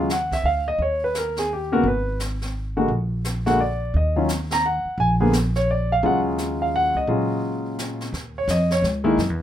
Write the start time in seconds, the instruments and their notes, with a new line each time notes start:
Already playing: upright bass D#2
0.10 grand piano F#5, snare, hi-hat pedal
0.32 grand piano E5, kick, snare
0.44 upright bass D2, grand piano F5
0.68 grand piano D#5
0.79 upright bass D#2, grand piano C#5, brush sweep
1.04 grand piano B4
1.15 grand piano A#4, snare, hi-hat pedal
1.36 grand piano G#4, snare
1.53 grand piano G4
1.72 grand piano C#3 A#3 B3 F#4 A#4
1.83 upright bass G#1, brush sweep
1.88 grand piano B4
2.20 snare, hi-hat pedal
2.42 snare
2.77 grand piano D3 G#3 A#3 F#4
2.88 upright bass A#1, brush sweep
3.24 snare, hi-hat pedal
3.46 grand piano D3 G#3 A#3 F#4 F#5, snare
3.61 grand piano D5
3.94 upright bass D#2, grand piano D#5, brush sweep
4.16 grand piano D#3 F#3 C#4 F4
4.29 snare, hi-hat pedal
4.51 grand piano A#5, snare
4.66 grand piano F#5
4.85 muted upright bass stroke
4.98 upright bass A#1, grand piano G#5, brush sweep
5.20 grand piano D3 A#3 B3 G#4
5.33 snare, hi-hat pedal
5.55 grand piano C#5, snare
5.71 grand piano D5
5.92 grand piano F5
6.03 upright bass D#2, grand piano C#3 F#3 G#3 F4 F#5, brush sweep
6.38 snare, hi-hat pedal
6.62 grand piano F5
6.76 grand piano F#5
6.95 upright bass C#2, grand piano D#5
7.07 upright bass A#2, grand piano C#3 F#3 G#3 F4, brush sweep
7.79 snare, hi-hat pedal
8.01 snare
8.13 upright bass D#2, brush sweep, snare
8.38 grand piano C#5
8.48 upright bass F2, grand piano D#5, snare, hi-hat pedal
8.70 grand piano C#5, snare
8.82 upright bass C#2, snare
9.04 grand piano D#3 G#3 A#3 E4
9.18 upright bass F#2, brush sweep, snare
9.30 upright bass E2